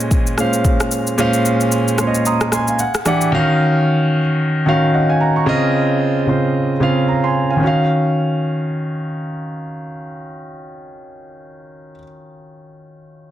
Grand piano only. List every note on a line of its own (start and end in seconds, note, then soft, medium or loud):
0.00 0.37 A#2 loud
0.00 0.38 G#3 medium
0.00 0.39 C#4 loud
0.00 0.39 C5 loud
0.00 2.07 D#5 loud
0.37 1.04 A#2 medium
0.37 1.04 G#3 medium
0.37 1.04 C#4 medium
0.37 1.05 C5 medium
0.37 1.05 F5 medium
1.18 1.84 A#2 loud
1.18 1.84 G#3 loud
1.18 1.85 C#4 loud
1.18 1.85 C5 loud
1.18 1.85 F5 loud
1.98 2.43 A#2 medium
1.98 2.43 G#3 medium
1.98 2.44 C#4 medium
1.98 2.44 C5 medium
1.98 2.07 C#5 medium
1.98 2.24 C6 medium
2.07 2.47 D#5 medium
2.26 2.51 A#5 medium
2.26 2.51 C6 medium
2.26 2.51 D#6 medium
2.53 2.67 G#5 medium
2.53 2.67 C6 medium
2.68 2.94 F5 medium
2.68 2.94 G#5 medium
2.80 3.04 F#5 medium
3.05 3.28 E3 medium
3.05 3.28 D4 medium
3.05 3.29 G4 medium
3.05 3.31 D5 medium
3.05 3.29 F#5 medium
3.32 4.19 D#3 loud
3.32 4.19 C#4 loud
3.32 4.20 F#4 loud
3.32 4.20 F5 loud
4.66 5.32 D#3 medium
4.66 5.33 C#4 medium
4.66 5.33 F#4 medium
4.66 4.94 F5 medium
4.94 5.09 D#5 medium
4.94 5.08 F#5 medium
5.09 5.20 F5 medium
5.09 5.20 G#5 medium
5.21 5.35 F#5 medium
5.21 5.35 A#5 medium
5.36 5.62 A#5 medium
5.36 5.61 C#6 medium
5.46 6.12 C#3 loud
5.46 6.13 C4 loud
5.46 6.13 F4 loud
5.46 6.14 D#5 loud
6.27 6.71 C#3 medium
6.27 6.72 C4 medium
6.27 6.72 F4 medium
6.27 6.73 C5 medium
6.80 7.25 C#3 medium
6.80 7.25 C4 medium
6.80 7.26 F4 medium
6.80 7.09 F5 medium
7.08 7.23 A#5 medium
7.24 7.49 G#5 medium
7.24 7.49 C6 medium
7.50 7.66 F5 medium
7.50 7.76 G#5 medium
7.56 11.91 D#3 medium
7.56 11.95 C#4 medium
7.63 11.99 F#4 medium
7.63 12.02 F5 medium